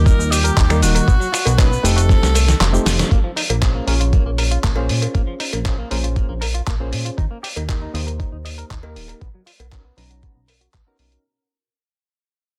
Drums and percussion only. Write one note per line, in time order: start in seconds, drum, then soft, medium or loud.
0.06 kick loud
0.06 closed hi-hat medium
0.06 cabasa soft
0.20 cabasa soft
0.32 open hi-hat loud
0.32 cabasa medium
0.45 closed hi-hat medium
0.45 cabasa soft
0.57 kick loud
0.57 clap loud
0.57 closed hi-hat medium
0.57 cabasa medium
0.70 finger snap medium
0.70 cowbell medium
0.70 cabasa soft
0.82 open hi-hat medium
0.82 cabasa medium
0.95 closed hi-hat medium
0.95 cowbell medium
0.95 cabasa soft
1.08 kick loud
1.08 closed hi-hat medium
1.08 cabasa soft
1.22 cabasa soft
1.34 finger snap medium
1.34 open hi-hat loud
1.34 cabasa medium
1.45 closed hi-hat medium
1.45 cowbell medium
1.45 cabasa soft
1.59 kick loud
1.59 clap loud
1.59 closed hi-hat medium
1.59 cabasa soft
1.73 cabasa soft
1.85 open hi-hat medium
1.85 cabasa medium
1.98 closed hi-hat medium
1.98 cabasa soft
2.09 kick loud
2.09 snare medium
2.09 closed hi-hat medium
2.09 cabasa soft
2.23 snare medium
2.23 cabasa soft
2.35 open hi-hat loud
2.35 cowbell medium
2.35 cabasa medium
2.48 snare medium
2.48 closed hi-hat medium
2.48 cabasa soft
2.61 snare medium
2.61 clap loud
2.61 closed hi-hat medium
2.61 cabasa medium
2.74 cabasa soft
2.86 snare loud
2.86 open hi-hat medium
2.86 cabasa medium
2.99 snare loud
2.99 closed hi-hat medium
2.99 cabasa soft
3.11 kick loud
3.11 closed hi-hat medium
3.37 open hi-hat loud
3.50 closed hi-hat medium
3.50 cowbell medium
3.62 kick loud
3.62 clap loud
3.62 closed hi-hat medium
3.88 open hi-hat medium
4.01 closed hi-hat medium
4.13 kick loud
4.13 closed hi-hat medium
4.38 open hi-hat loud
4.51 closed hi-hat medium
4.64 kick loud
4.64 clap loud
4.64 closed hi-hat medium
4.76 cowbell medium
4.89 open hi-hat medium
5.02 closed hi-hat medium
5.02 cowbell medium
5.15 kick loud
5.15 closed hi-hat soft
5.40 open hi-hat loud
5.53 closed hi-hat medium
5.53 cowbell medium
5.65 kick loud
5.65 clap loud
5.65 closed hi-hat soft
5.91 open hi-hat medium
6.04 closed hi-hat medium
6.16 kick loud
6.16 closed hi-hat soft
6.42 open hi-hat loud
6.42 cowbell medium
6.55 closed hi-hat medium
6.67 kick loud
6.67 clap loud
6.67 closed hi-hat medium
6.93 open hi-hat medium
7.06 closed hi-hat medium
7.18 kick loud
7.18 closed hi-hat soft
7.44 open hi-hat loud
7.56 closed hi-hat medium
7.56 cowbell loud
7.69 kick loud
7.69 clap loud
7.69 closed hi-hat soft
7.95 open hi-hat medium
8.08 closed hi-hat medium
8.20 kick loud
8.20 closed hi-hat soft
8.46 open hi-hat loud
8.59 closed hi-hat medium
8.71 kick loud
8.71 clap loud
8.71 closed hi-hat soft
8.83 cowbell medium
8.96 open hi-hat medium
9.08 closed hi-hat medium
9.08 cowbell medium
9.21 kick loud
9.21 closed hi-hat soft
9.47 open hi-hat medium
9.60 closed hi-hat medium
9.60 cowbell medium
9.72 kick loud
9.72 clap loud
9.72 closed hi-hat soft
9.98 open hi-hat medium
10.11 closed hi-hat medium
10.23 kick loud
10.23 closed hi-hat soft
10.48 open hi-hat loud
10.48 cowbell medium
10.61 closed hi-hat medium
10.74 kick loud
10.74 clap loud
10.74 closed hi-hat soft
10.99 open hi-hat medium
11.12 closed hi-hat medium